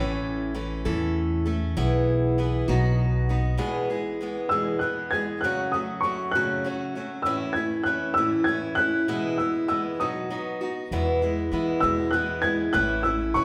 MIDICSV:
0, 0, Header, 1, 4, 480
1, 0, Start_track
1, 0, Key_signature, 4, "major"
1, 0, Tempo, 609756
1, 1395, Time_signature, 6, 3, 24, 8
1, 10584, End_track
2, 0, Start_track
2, 0, Title_t, "Upright piano"
2, 0, Program_c, 0, 0
2, 3536, Note_on_c, 0, 88, 71
2, 3772, Note_on_c, 0, 90, 61
2, 3791, Note_off_c, 0, 88, 0
2, 4020, Note_on_c, 0, 92, 74
2, 4029, Note_off_c, 0, 90, 0
2, 4257, Note_on_c, 0, 90, 65
2, 4273, Note_off_c, 0, 92, 0
2, 4500, Note_on_c, 0, 87, 60
2, 4511, Note_off_c, 0, 90, 0
2, 4728, Note_on_c, 0, 85, 63
2, 4753, Note_off_c, 0, 87, 0
2, 4971, Note_on_c, 0, 90, 75
2, 4987, Note_off_c, 0, 85, 0
2, 5490, Note_off_c, 0, 90, 0
2, 5687, Note_on_c, 0, 88, 66
2, 5927, Note_on_c, 0, 92, 64
2, 5947, Note_off_c, 0, 88, 0
2, 6168, Note_on_c, 0, 90, 66
2, 6186, Note_off_c, 0, 92, 0
2, 6407, Note_on_c, 0, 88, 71
2, 6427, Note_off_c, 0, 90, 0
2, 6646, Note_on_c, 0, 92, 71
2, 6667, Note_off_c, 0, 88, 0
2, 6890, Note_on_c, 0, 90, 74
2, 6906, Note_off_c, 0, 92, 0
2, 7382, Note_on_c, 0, 88, 52
2, 7396, Note_off_c, 0, 90, 0
2, 7612, Note_off_c, 0, 88, 0
2, 7624, Note_on_c, 0, 88, 62
2, 7851, Note_off_c, 0, 88, 0
2, 7870, Note_on_c, 0, 87, 59
2, 8380, Note_off_c, 0, 87, 0
2, 9292, Note_on_c, 0, 88, 75
2, 9526, Note_off_c, 0, 88, 0
2, 9530, Note_on_c, 0, 90, 70
2, 9775, Note_on_c, 0, 92, 78
2, 9790, Note_off_c, 0, 90, 0
2, 10019, Note_on_c, 0, 90, 75
2, 10032, Note_off_c, 0, 92, 0
2, 10249, Note_off_c, 0, 90, 0
2, 10257, Note_on_c, 0, 88, 67
2, 10488, Note_off_c, 0, 88, 0
2, 10503, Note_on_c, 0, 85, 67
2, 10584, Note_off_c, 0, 85, 0
2, 10584, End_track
3, 0, Start_track
3, 0, Title_t, "Steel-string acoustic guitar"
3, 0, Program_c, 1, 25
3, 0, Note_on_c, 1, 45, 61
3, 0, Note_on_c, 1, 52, 72
3, 0, Note_on_c, 1, 57, 68
3, 0, Note_on_c, 1, 61, 67
3, 0, Note_on_c, 1, 69, 72
3, 420, Note_off_c, 1, 52, 0
3, 422, Note_off_c, 1, 57, 0
3, 426, Note_off_c, 1, 61, 0
3, 429, Note_on_c, 1, 52, 51
3, 431, Note_off_c, 1, 69, 0
3, 431, Note_on_c, 1, 57, 50
3, 433, Note_off_c, 1, 45, 0
3, 436, Note_on_c, 1, 61, 50
3, 441, Note_on_c, 1, 69, 56
3, 661, Note_off_c, 1, 69, 0
3, 664, Note_off_c, 1, 57, 0
3, 668, Note_off_c, 1, 52, 0
3, 668, Note_off_c, 1, 61, 0
3, 670, Note_on_c, 1, 69, 67
3, 674, Note_on_c, 1, 57, 54
3, 677, Note_on_c, 1, 52, 55
3, 677, Note_on_c, 1, 61, 63
3, 679, Note_on_c, 1, 45, 44
3, 1137, Note_off_c, 1, 69, 0
3, 1144, Note_off_c, 1, 61, 0
3, 1146, Note_off_c, 1, 57, 0
3, 1146, Note_on_c, 1, 69, 52
3, 1154, Note_on_c, 1, 61, 47
3, 1155, Note_on_c, 1, 57, 44
3, 1156, Note_off_c, 1, 52, 0
3, 1157, Note_off_c, 1, 45, 0
3, 1390, Note_off_c, 1, 57, 0
3, 1390, Note_off_c, 1, 69, 0
3, 1391, Note_on_c, 1, 47, 69
3, 1391, Note_on_c, 1, 52, 62
3, 1392, Note_off_c, 1, 61, 0
3, 1393, Note_on_c, 1, 59, 67
3, 1395, Note_on_c, 1, 64, 78
3, 1400, Note_on_c, 1, 68, 76
3, 1864, Note_off_c, 1, 52, 0
3, 1870, Note_off_c, 1, 59, 0
3, 1872, Note_off_c, 1, 47, 0
3, 1874, Note_off_c, 1, 64, 0
3, 1874, Note_on_c, 1, 52, 46
3, 1876, Note_off_c, 1, 68, 0
3, 1879, Note_on_c, 1, 59, 50
3, 1885, Note_on_c, 1, 68, 57
3, 1887, Note_on_c, 1, 64, 49
3, 2105, Note_off_c, 1, 68, 0
3, 2108, Note_on_c, 1, 66, 66
3, 2109, Note_off_c, 1, 64, 0
3, 2110, Note_off_c, 1, 59, 0
3, 2112, Note_on_c, 1, 63, 61
3, 2113, Note_off_c, 1, 52, 0
3, 2117, Note_on_c, 1, 54, 49
3, 2119, Note_on_c, 1, 47, 53
3, 2119, Note_on_c, 1, 59, 60
3, 2582, Note_off_c, 1, 66, 0
3, 2588, Note_off_c, 1, 63, 0
3, 2591, Note_on_c, 1, 66, 47
3, 2593, Note_off_c, 1, 59, 0
3, 2594, Note_off_c, 1, 54, 0
3, 2596, Note_off_c, 1, 47, 0
3, 2598, Note_on_c, 1, 63, 43
3, 2603, Note_on_c, 1, 59, 46
3, 2815, Note_on_c, 1, 40, 58
3, 2816, Note_off_c, 1, 59, 0
3, 2819, Note_on_c, 1, 47, 61
3, 2821, Note_on_c, 1, 52, 62
3, 2823, Note_off_c, 1, 63, 0
3, 2823, Note_off_c, 1, 66, 0
3, 2824, Note_on_c, 1, 56, 62
3, 2826, Note_on_c, 1, 59, 64
3, 2826, Note_on_c, 1, 68, 63
3, 3058, Note_off_c, 1, 68, 0
3, 3063, Note_off_c, 1, 40, 0
3, 3064, Note_off_c, 1, 59, 0
3, 3065, Note_off_c, 1, 47, 0
3, 3067, Note_off_c, 1, 52, 0
3, 3068, Note_off_c, 1, 56, 0
3, 3068, Note_on_c, 1, 68, 38
3, 3073, Note_on_c, 1, 59, 35
3, 3076, Note_on_c, 1, 56, 35
3, 3085, Note_on_c, 1, 52, 36
3, 3301, Note_off_c, 1, 52, 0
3, 3310, Note_off_c, 1, 56, 0
3, 3310, Note_off_c, 1, 68, 0
3, 3311, Note_on_c, 1, 52, 40
3, 3312, Note_off_c, 1, 59, 0
3, 3320, Note_on_c, 1, 56, 45
3, 3325, Note_on_c, 1, 59, 43
3, 3330, Note_on_c, 1, 68, 50
3, 3543, Note_off_c, 1, 68, 0
3, 3544, Note_off_c, 1, 59, 0
3, 3548, Note_off_c, 1, 56, 0
3, 3551, Note_off_c, 1, 52, 0
3, 3552, Note_on_c, 1, 68, 51
3, 3554, Note_on_c, 1, 59, 46
3, 3558, Note_on_c, 1, 56, 47
3, 3559, Note_on_c, 1, 52, 46
3, 3562, Note_on_c, 1, 47, 41
3, 3565, Note_on_c, 1, 40, 41
3, 3779, Note_off_c, 1, 52, 0
3, 3788, Note_off_c, 1, 56, 0
3, 3788, Note_on_c, 1, 52, 40
3, 3791, Note_off_c, 1, 59, 0
3, 3792, Note_off_c, 1, 68, 0
3, 3796, Note_off_c, 1, 47, 0
3, 3797, Note_on_c, 1, 56, 35
3, 3798, Note_off_c, 1, 40, 0
3, 3800, Note_on_c, 1, 59, 41
3, 3805, Note_on_c, 1, 68, 40
3, 4027, Note_off_c, 1, 68, 0
3, 4030, Note_off_c, 1, 52, 0
3, 4034, Note_off_c, 1, 56, 0
3, 4036, Note_off_c, 1, 59, 0
3, 4036, Note_on_c, 1, 68, 40
3, 4047, Note_on_c, 1, 59, 39
3, 4050, Note_on_c, 1, 56, 36
3, 4053, Note_on_c, 1, 52, 33
3, 4274, Note_off_c, 1, 68, 0
3, 4279, Note_off_c, 1, 59, 0
3, 4280, Note_off_c, 1, 56, 0
3, 4280, Note_on_c, 1, 42, 59
3, 4282, Note_off_c, 1, 52, 0
3, 4284, Note_on_c, 1, 49, 56
3, 4285, Note_on_c, 1, 54, 55
3, 4287, Note_on_c, 1, 57, 57
3, 4290, Note_on_c, 1, 61, 61
3, 4292, Note_on_c, 1, 66, 56
3, 4505, Note_off_c, 1, 66, 0
3, 4508, Note_off_c, 1, 61, 0
3, 4515, Note_off_c, 1, 42, 0
3, 4515, Note_off_c, 1, 57, 0
3, 4515, Note_on_c, 1, 66, 40
3, 4517, Note_off_c, 1, 49, 0
3, 4518, Note_off_c, 1, 54, 0
3, 4518, Note_on_c, 1, 61, 34
3, 4524, Note_on_c, 1, 57, 31
3, 4527, Note_on_c, 1, 54, 35
3, 4740, Note_off_c, 1, 54, 0
3, 4747, Note_off_c, 1, 57, 0
3, 4749, Note_on_c, 1, 54, 41
3, 4751, Note_off_c, 1, 61, 0
3, 4753, Note_off_c, 1, 66, 0
3, 4757, Note_on_c, 1, 57, 46
3, 4761, Note_on_c, 1, 61, 43
3, 4767, Note_on_c, 1, 66, 41
3, 4990, Note_off_c, 1, 54, 0
3, 4990, Note_off_c, 1, 66, 0
3, 4992, Note_off_c, 1, 61, 0
3, 4994, Note_off_c, 1, 57, 0
3, 5000, Note_on_c, 1, 66, 53
3, 5001, Note_on_c, 1, 61, 52
3, 5002, Note_on_c, 1, 57, 50
3, 5004, Note_on_c, 1, 54, 45
3, 5008, Note_on_c, 1, 49, 46
3, 5011, Note_on_c, 1, 42, 47
3, 5221, Note_off_c, 1, 54, 0
3, 5230, Note_off_c, 1, 57, 0
3, 5231, Note_on_c, 1, 54, 40
3, 5233, Note_off_c, 1, 61, 0
3, 5235, Note_off_c, 1, 66, 0
3, 5239, Note_off_c, 1, 49, 0
3, 5240, Note_on_c, 1, 57, 48
3, 5241, Note_off_c, 1, 42, 0
3, 5243, Note_on_c, 1, 61, 47
3, 5247, Note_on_c, 1, 66, 48
3, 5463, Note_off_c, 1, 66, 0
3, 5470, Note_off_c, 1, 61, 0
3, 5471, Note_off_c, 1, 54, 0
3, 5473, Note_on_c, 1, 66, 40
3, 5475, Note_off_c, 1, 57, 0
3, 5480, Note_on_c, 1, 61, 39
3, 5487, Note_on_c, 1, 57, 37
3, 5493, Note_on_c, 1, 54, 35
3, 5707, Note_off_c, 1, 57, 0
3, 5708, Note_off_c, 1, 61, 0
3, 5712, Note_off_c, 1, 66, 0
3, 5712, Note_on_c, 1, 45, 55
3, 5713, Note_off_c, 1, 54, 0
3, 5716, Note_on_c, 1, 57, 54
3, 5717, Note_on_c, 1, 52, 61
3, 5718, Note_on_c, 1, 61, 60
3, 5719, Note_on_c, 1, 64, 66
3, 5942, Note_off_c, 1, 64, 0
3, 5950, Note_off_c, 1, 61, 0
3, 5952, Note_off_c, 1, 45, 0
3, 5952, Note_on_c, 1, 64, 41
3, 5954, Note_off_c, 1, 52, 0
3, 5954, Note_off_c, 1, 57, 0
3, 5960, Note_on_c, 1, 61, 33
3, 5965, Note_on_c, 1, 57, 31
3, 6184, Note_off_c, 1, 57, 0
3, 6187, Note_on_c, 1, 52, 43
3, 6190, Note_off_c, 1, 61, 0
3, 6191, Note_off_c, 1, 64, 0
3, 6194, Note_on_c, 1, 57, 42
3, 6199, Note_on_c, 1, 61, 43
3, 6205, Note_on_c, 1, 64, 44
3, 6421, Note_off_c, 1, 64, 0
3, 6426, Note_off_c, 1, 61, 0
3, 6427, Note_off_c, 1, 57, 0
3, 6429, Note_off_c, 1, 52, 0
3, 6431, Note_on_c, 1, 64, 55
3, 6435, Note_on_c, 1, 61, 51
3, 6436, Note_on_c, 1, 57, 49
3, 6439, Note_on_c, 1, 45, 40
3, 6440, Note_on_c, 1, 52, 43
3, 6657, Note_off_c, 1, 52, 0
3, 6665, Note_off_c, 1, 57, 0
3, 6666, Note_on_c, 1, 52, 38
3, 6668, Note_off_c, 1, 61, 0
3, 6671, Note_off_c, 1, 64, 0
3, 6674, Note_on_c, 1, 57, 39
3, 6675, Note_off_c, 1, 45, 0
3, 6678, Note_on_c, 1, 61, 47
3, 6683, Note_on_c, 1, 64, 52
3, 6899, Note_off_c, 1, 64, 0
3, 6907, Note_off_c, 1, 61, 0
3, 6909, Note_off_c, 1, 52, 0
3, 6909, Note_on_c, 1, 64, 43
3, 6913, Note_off_c, 1, 57, 0
3, 6916, Note_on_c, 1, 61, 40
3, 6922, Note_on_c, 1, 57, 31
3, 7146, Note_off_c, 1, 64, 0
3, 7149, Note_on_c, 1, 47, 58
3, 7149, Note_on_c, 1, 52, 56
3, 7151, Note_off_c, 1, 57, 0
3, 7153, Note_off_c, 1, 61, 0
3, 7154, Note_on_c, 1, 56, 62
3, 7156, Note_on_c, 1, 59, 60
3, 7156, Note_on_c, 1, 64, 64
3, 7386, Note_off_c, 1, 64, 0
3, 7391, Note_off_c, 1, 47, 0
3, 7391, Note_off_c, 1, 52, 0
3, 7393, Note_off_c, 1, 56, 0
3, 7394, Note_off_c, 1, 59, 0
3, 7395, Note_on_c, 1, 64, 38
3, 7402, Note_on_c, 1, 59, 36
3, 7409, Note_on_c, 1, 56, 30
3, 7618, Note_off_c, 1, 56, 0
3, 7622, Note_on_c, 1, 52, 41
3, 7625, Note_off_c, 1, 59, 0
3, 7627, Note_off_c, 1, 64, 0
3, 7628, Note_on_c, 1, 56, 42
3, 7634, Note_on_c, 1, 59, 45
3, 7636, Note_on_c, 1, 64, 41
3, 7866, Note_off_c, 1, 59, 0
3, 7867, Note_off_c, 1, 52, 0
3, 7870, Note_off_c, 1, 56, 0
3, 7871, Note_off_c, 1, 64, 0
3, 7874, Note_on_c, 1, 66, 48
3, 7876, Note_on_c, 1, 59, 50
3, 7877, Note_on_c, 1, 63, 52
3, 7880, Note_on_c, 1, 54, 46
3, 7884, Note_on_c, 1, 47, 44
3, 8102, Note_off_c, 1, 54, 0
3, 8103, Note_off_c, 1, 59, 0
3, 8110, Note_off_c, 1, 63, 0
3, 8111, Note_on_c, 1, 54, 36
3, 8112, Note_on_c, 1, 59, 43
3, 8113, Note_off_c, 1, 66, 0
3, 8118, Note_off_c, 1, 47, 0
3, 8120, Note_on_c, 1, 63, 44
3, 8124, Note_on_c, 1, 66, 45
3, 8342, Note_off_c, 1, 66, 0
3, 8351, Note_on_c, 1, 66, 44
3, 8352, Note_off_c, 1, 54, 0
3, 8353, Note_off_c, 1, 59, 0
3, 8353, Note_off_c, 1, 63, 0
3, 8362, Note_on_c, 1, 63, 34
3, 8367, Note_on_c, 1, 59, 29
3, 8592, Note_off_c, 1, 59, 0
3, 8592, Note_off_c, 1, 66, 0
3, 8596, Note_on_c, 1, 40, 62
3, 8597, Note_off_c, 1, 63, 0
3, 8598, Note_on_c, 1, 47, 63
3, 8599, Note_on_c, 1, 52, 60
3, 8601, Note_on_c, 1, 59, 60
3, 8604, Note_on_c, 1, 56, 61
3, 8604, Note_on_c, 1, 64, 63
3, 8823, Note_off_c, 1, 64, 0
3, 8832, Note_off_c, 1, 59, 0
3, 8833, Note_on_c, 1, 64, 43
3, 8834, Note_off_c, 1, 40, 0
3, 8836, Note_off_c, 1, 47, 0
3, 8836, Note_off_c, 1, 52, 0
3, 8836, Note_off_c, 1, 56, 0
3, 8841, Note_on_c, 1, 59, 42
3, 8845, Note_on_c, 1, 56, 35
3, 8847, Note_on_c, 1, 52, 37
3, 9055, Note_off_c, 1, 52, 0
3, 9063, Note_off_c, 1, 56, 0
3, 9065, Note_on_c, 1, 52, 40
3, 9067, Note_off_c, 1, 59, 0
3, 9070, Note_off_c, 1, 64, 0
3, 9072, Note_on_c, 1, 56, 49
3, 9076, Note_on_c, 1, 59, 51
3, 9080, Note_on_c, 1, 64, 53
3, 9297, Note_off_c, 1, 64, 0
3, 9303, Note_off_c, 1, 59, 0
3, 9307, Note_off_c, 1, 56, 0
3, 9307, Note_on_c, 1, 64, 48
3, 9309, Note_off_c, 1, 52, 0
3, 9312, Note_on_c, 1, 59, 54
3, 9317, Note_on_c, 1, 56, 51
3, 9318, Note_on_c, 1, 52, 46
3, 9320, Note_on_c, 1, 47, 47
3, 9321, Note_on_c, 1, 40, 47
3, 9538, Note_off_c, 1, 52, 0
3, 9545, Note_off_c, 1, 56, 0
3, 9547, Note_off_c, 1, 59, 0
3, 9548, Note_on_c, 1, 52, 45
3, 9550, Note_off_c, 1, 64, 0
3, 9555, Note_on_c, 1, 56, 47
3, 9557, Note_off_c, 1, 47, 0
3, 9557, Note_on_c, 1, 59, 50
3, 9558, Note_off_c, 1, 40, 0
3, 9561, Note_on_c, 1, 64, 45
3, 9773, Note_off_c, 1, 64, 0
3, 9780, Note_off_c, 1, 59, 0
3, 9782, Note_on_c, 1, 64, 46
3, 9787, Note_off_c, 1, 56, 0
3, 9789, Note_off_c, 1, 52, 0
3, 9789, Note_on_c, 1, 59, 42
3, 9796, Note_on_c, 1, 56, 40
3, 9798, Note_on_c, 1, 52, 37
3, 10015, Note_off_c, 1, 52, 0
3, 10023, Note_off_c, 1, 64, 0
3, 10024, Note_on_c, 1, 45, 50
3, 10025, Note_on_c, 1, 52, 54
3, 10027, Note_off_c, 1, 59, 0
3, 10028, Note_off_c, 1, 56, 0
3, 10030, Note_on_c, 1, 61, 60
3, 10031, Note_on_c, 1, 57, 59
3, 10033, Note_on_c, 1, 64, 66
3, 10255, Note_off_c, 1, 64, 0
3, 10265, Note_off_c, 1, 61, 0
3, 10265, Note_on_c, 1, 64, 38
3, 10269, Note_off_c, 1, 45, 0
3, 10269, Note_off_c, 1, 57, 0
3, 10270, Note_off_c, 1, 52, 0
3, 10274, Note_on_c, 1, 61, 35
3, 10278, Note_on_c, 1, 57, 32
3, 10502, Note_off_c, 1, 57, 0
3, 10503, Note_on_c, 1, 52, 42
3, 10508, Note_off_c, 1, 61, 0
3, 10510, Note_off_c, 1, 64, 0
3, 10511, Note_on_c, 1, 57, 45
3, 10518, Note_on_c, 1, 61, 49
3, 10521, Note_on_c, 1, 64, 50
3, 10584, Note_off_c, 1, 52, 0
3, 10584, Note_off_c, 1, 57, 0
3, 10584, Note_off_c, 1, 61, 0
3, 10584, Note_off_c, 1, 64, 0
3, 10584, End_track
4, 0, Start_track
4, 0, Title_t, "Upright bass"
4, 0, Program_c, 2, 32
4, 0, Note_on_c, 2, 33, 82
4, 645, Note_off_c, 2, 33, 0
4, 672, Note_on_c, 2, 40, 83
4, 1361, Note_off_c, 2, 40, 0
4, 1392, Note_on_c, 2, 35, 77
4, 2080, Note_off_c, 2, 35, 0
4, 2110, Note_on_c, 2, 35, 81
4, 2799, Note_off_c, 2, 35, 0
4, 8590, Note_on_c, 2, 40, 67
4, 9048, Note_off_c, 2, 40, 0
4, 9067, Note_on_c, 2, 52, 56
4, 9298, Note_off_c, 2, 52, 0
4, 9310, Note_on_c, 2, 40, 68
4, 10001, Note_off_c, 2, 40, 0
4, 10031, Note_on_c, 2, 33, 72
4, 10489, Note_off_c, 2, 33, 0
4, 10510, Note_on_c, 2, 45, 62
4, 10584, Note_off_c, 2, 45, 0
4, 10584, End_track
0, 0, End_of_file